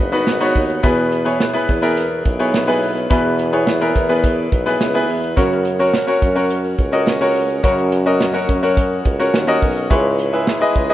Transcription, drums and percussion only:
0.13 closed hi-hat soft
0.27 snare loud
0.27 closed hi-hat medium
0.27 tambourine medium
0.55 kick medium
0.55 open hi-hat medium
0.70 closed hi-hat medium
0.83 kick loud
0.83 closed hi-hat medium
0.83 tambourine soft
0.98 closed hi-hat soft
1.12 closed hi-hat medium
1.12 tambourine soft
1.27 closed hi-hat soft
1.40 snare loud
1.40 closed hi-hat medium
1.40 tambourine medium
1.69 kick medium
1.69 closed hi-hat medium
1.69 tambourine medium
1.84 closed hi-hat soft
1.97 closed hi-hat medium
1.97 tambourine soft
2.25 kick medium
2.25 closed hi-hat medium
2.25 tambourine medium
2.40 closed hi-hat soft
2.54 snare loud
2.54 closed hi-hat medium
2.54 tambourine loud
2.83 open hi-hat medium
2.97 closed hi-hat soft
3.11 kick loud
3.11 closed hi-hat medium
3.11 tambourine soft
3.39 closed hi-hat medium
3.39 tambourine soft
3.54 closed hi-hat soft
3.67 snare loud
3.67 closed hi-hat medium
3.67 tambourine medium
3.82 closed hi-hat soft
3.96 kick medium
3.96 closed hi-hat medium
3.96 tambourine medium
4.11 closed hi-hat soft
4.24 kick medium
4.24 closed hi-hat loud
4.52 kick loud
4.52 closed hi-hat medium
4.52 tambourine medium
4.67 snare soft
4.67 closed hi-hat medium
4.80 snare loud
4.80 closed hi-hat medium
4.80 tambourine medium
5.09 open hi-hat medium
5.24 closed hi-hat soft
5.37 kick loud
5.37 closed hi-hat medium
5.37 tambourine soft
5.52 closed hi-hat soft
5.65 closed hi-hat medium
5.65 tambourine soft
5.80 closed hi-hat soft
5.93 snare loud
5.93 closed hi-hat medium
5.93 tambourine medium
6.08 closed hi-hat soft
6.22 kick medium
6.22 closed hi-hat medium
6.22 tambourine medium
6.37 closed hi-hat soft
6.50 closed hi-hat medium
6.50 tambourine soft
6.65 closed hi-hat soft
6.78 kick medium
6.78 closed hi-hat medium
6.78 tambourine medium
6.93 closed hi-hat medium
7.06 snare loud
7.06 closed hi-hat medium
7.06 tambourine loud
7.36 open hi-hat medium
7.36 tambourine soft
7.50 closed hi-hat soft
7.64 kick loud
7.64 closed hi-hat medium
7.64 tambourine soft
7.78 closed hi-hat soft
7.92 closed hi-hat medium
7.92 tambourine soft
8.07 closed hi-hat soft
8.21 snare loud
8.21 closed hi-hat medium
8.21 tambourine medium
8.49 kick medium
8.49 closed hi-hat medium
8.49 tambourine medium
8.64 closed hi-hat soft
8.77 kick medium
8.77 closed hi-hat medium
8.77 tambourine soft
9.05 kick medium
9.05 closed hi-hat medium
9.05 tambourine medium
9.20 snare soft
9.20 closed hi-hat medium
9.33 snare loud
9.33 closed hi-hat medium
9.33 tambourine loud
9.62 kick medium
9.62 open hi-hat medium
9.77 closed hi-hat soft
9.91 kick loud
9.91 closed hi-hat medium
9.91 tambourine soft
10.18 closed hi-hat medium
10.18 tambourine soft
10.34 closed hi-hat soft
10.47 snare loud
10.47 closed hi-hat medium
10.47 tambourine medium
10.62 closed hi-hat soft
10.76 kick medium
10.76 closed hi-hat medium
10.76 tambourine medium
10.90 closed hi-hat soft

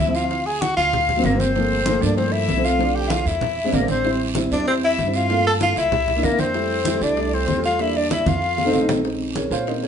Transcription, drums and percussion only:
0.00 high conga medium
0.15 high bongo soft
0.15 high conga soft
0.15 short guiro medium
0.31 high bongo medium
0.31 high conga soft
0.31 long guiro medium
0.47 high conga soft
0.62 high bongo medium
0.62 high conga medium
0.62 short guiro medium
0.77 high bongo soft
0.77 high conga soft
0.77 short guiro medium
0.93 high bongo medium
0.93 high conga soft
0.93 low conga medium
0.93 long guiro medium
1.09 high bongo soft
1.09 high conga soft
1.09 low conga medium
1.24 high bongo soft
1.24 low bongo medium
1.24 high conga medium
1.24 short guiro medium
1.40 high bongo soft
1.40 high conga medium
1.40 short guiro medium
1.55 high bongo medium
1.55 high conga soft
1.55 long guiro medium
1.71 high conga soft
1.86 high bongo medium
1.86 high conga medium
1.86 short guiro medium
2.02 high bongo soft
2.02 high conga soft
2.02 short guiro medium
2.17 high bongo medium
2.17 high conga soft
2.17 long guiro medium
2.33 high bongo soft
2.33 high conga soft
2.48 high bongo soft
2.48 low bongo medium
2.48 high conga medium
2.48 short guiro medium
2.64 high bongo soft
2.64 high conga soft
2.64 short guiro medium
2.79 high bongo medium
2.79 high conga soft
2.79 long guiro medium
2.95 high conga soft
3.10 high bongo medium
3.10 high conga loud
3.10 short guiro medium
3.26 high bongo soft
3.26 high conga soft
3.26 short guiro medium
3.41 high bongo medium
3.41 high conga soft
3.41 low conga medium
3.41 long guiro medium
3.57 high bongo soft
3.57 high conga soft
3.73 high bongo soft
3.73 low bongo medium
3.73 high conga medium
3.73 short guiro medium
3.88 high bongo soft
3.88 high conga medium
3.88 short guiro medium
4.04 high bongo medium
4.04 high conga soft
4.04 long guiro medium
4.20 high conga soft
4.35 high bongo medium
4.35 high conga medium
4.35 short guiro medium
4.51 high bongo soft
4.51 high conga soft
4.51 short guiro medium
4.67 high bongo medium
4.67 high conga soft
4.67 long guiro medium
4.83 high bongo soft
4.83 high conga soft
4.98 high bongo soft
4.98 low bongo medium
4.98 high conga medium
4.98 short guiro medium
5.14 high bongo soft
5.14 high conga soft
5.14 short guiro medium
5.30 high bongo medium
5.30 high conga soft
5.30 long guiro medium
5.46 high conga soft
5.60 high bongo medium
5.60 high conga medium
5.60 short guiro medium
5.76 high bongo soft
5.76 high conga soft
5.76 short guiro medium
5.92 high bongo medium
5.92 high conga soft
5.92 low conga medium
5.92 long guiro medium
6.08 high bongo soft
6.08 high conga soft
6.08 low conga medium
6.23 high bongo soft
6.23 low bongo medium
6.23 high conga medium
6.23 short guiro medium
6.39 high bongo soft
6.39 high conga medium
6.39 short guiro medium
6.54 high bongo medium
6.54 high conga soft
6.54 long guiro medium
6.70 high conga soft
6.85 high bongo medium
6.85 high conga medium
6.85 short guiro medium
7.01 high bongo soft
7.01 high conga soft
7.01 short guiro medium
7.17 high bongo medium
7.17 high conga soft
7.17 long guiro medium
7.32 high bongo soft
7.32 high conga soft
7.48 high bongo soft
7.48 low bongo medium
7.48 high conga medium
7.48 short guiro medium
7.64 high bongo soft
7.64 high conga soft
7.64 short guiro medium
7.79 high bongo medium
7.79 high conga soft
7.79 long guiro medium
7.95 high conga soft
8.11 high bongo medium
8.11 high conga loud
8.11 short guiro medium
8.26 high bongo medium
8.26 high conga loud
8.26 short guiro medium
8.42 long guiro medium
8.58 low bongo medium
8.74 low bongo medium
8.74 short guiro medium
8.89 low bongo medium
8.89 low conga medium
8.89 short guiro medium
9.05 high bongo medium
9.05 high conga soft
9.05 long guiro medium
9.20 high conga soft
9.36 high bongo medium
9.36 high conga medium
9.36 short guiro medium
9.51 high conga soft
9.51 short guiro medium
9.67 high bongo medium
9.67 high conga soft
9.67 long guiro medium
9.83 high bongo soft
9.83 high conga soft

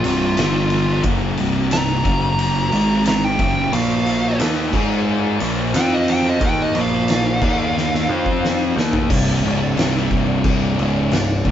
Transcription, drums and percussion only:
0.04 ride medium
0.37 snare loud
0.37 ride loud
0.70 ride medium
1.03 kick loud
1.03 ride loud
1.37 ride medium
1.71 snare loud
1.71 ride loud
2.05 kick loud
2.05 ride medium
2.39 ride loud
2.72 ride medium
3.06 snare loud
3.06 ride loud
3.39 kick loud
3.39 ride medium
3.73 ride loud
4.06 ride medium
4.40 snare loud
4.40 ride loud
4.73 kick loud
4.73 crash medium
5.40 ride medium
5.74 snare loud
5.74 ride loud
6.08 ride medium
6.41 kick loud
6.41 ride loud
6.75 ride medium
7.08 snare loud
7.08 ride medium
7.42 kick loud
7.42 crash medium
7.78 snare medium
7.94 snare medium
8.26 kick medium
8.45 snare medium
8.78 snare loud
8.93 floor tom medium
9.10 kick loud
9.10 crash loud
9.10 crash medium
9.44 crash medium
9.77 snare loud
9.77 crash medium
9.97 snare soft
10.11 kick medium
10.11 crash medium
10.44 kick loud
10.44 crash medium
10.79 crash medium
11.11 snare loud
11.11 crash medium
11.45 kick medium
11.45 crash medium

